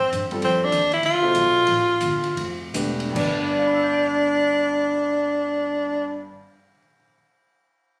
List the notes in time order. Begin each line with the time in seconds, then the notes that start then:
Already playing: A2 C4
0.02 kick
0.13 G2, hi-hat pedal, ride
0.31 G3 C4 F4 A4, muted upright bass stroke, ride
0.42 F2 C4, ride
0.64 D4
0.72 D#2, hi-hat pedal, ride
0.92 E4, ride
1.02 D2 F4, ride
1.22 B2 A4 C5 E5
1.34 B1, hi-hat pedal, ride
1.67 A1, ride
2.01 G1, hi-hat pedal, ride
2.24 ride
2.36 F1, ride
2.74 E1 A3 D4 G4 B4, hi-hat pedal, ride
3.00 ride
3.10 G2 G3
3.15 G1 D4 B4, kick, crash
3.22 D5
3.58 F5
3.66 B5
3.74 E6
3.83 G6
3.93 D7
4.04 F7